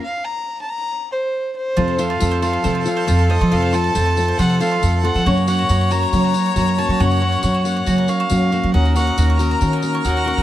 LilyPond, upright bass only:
\new Staff \with { instrumentName = "Upright bass" } { \clef bass \time 4/4 \key f \phrygian \tempo 4 = 138 r1 | f,4 f,4 f4 f,8. f16 | f,4 f,4 f4 f,8. f16 | ges,4 ges,4 ges4 ges,8. ges16 |
ges,4 ges,4 ges4 ges,8. ges16 | ees,4 ees,4 ees4 ees,8. ees16 | }